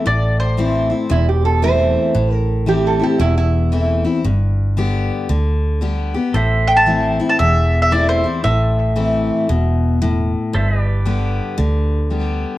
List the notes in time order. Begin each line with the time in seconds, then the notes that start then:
0.06 A1 A2 D5
0.40 C5
0.58 E3 A3 C4 E4
0.90 C4 E4
1.10 E1 E2 E4
1.29 G4
1.45 A4
1.62 E3 A3 C4 E4 C5
2.15 A1 A2
2.34 A#4
2.66 E3 A3 C4 E4 G4
2.87 A4
3.00 C4 E4 G4
3.19 E1 E2 E4
3.38 E4
3.72 E3 A3 C4 E4
4.05 C4 E4
4.25 G1 G2
4.77 D3 G3 B3 G4
5.29 D2 D3
5.81 D3 G3 B3 G4
6.14 B3 G4
6.34 A1 A2 A4 C5 E5
6.67 G5
6.77 A5
6.86 E3 A3 C4 E4
7.19 C4 E4
7.29 A5
7.39 E1 E2 E5
7.82 E5
7.91 E3 A3 C4 E4 D5
8.09 C5
8.24 C4 E4
8.44 A1 A2 E5
8.96 E3 A3 C4 E4
9.49 E1 B2
10.01 A2
10.53 G1 G2 A4 C5 E5
10.75 B4
10.79 G4 D5
11.05 D3 G3 B3 G4
11.57 D2 D3
12.10 D3 G3 B3 G4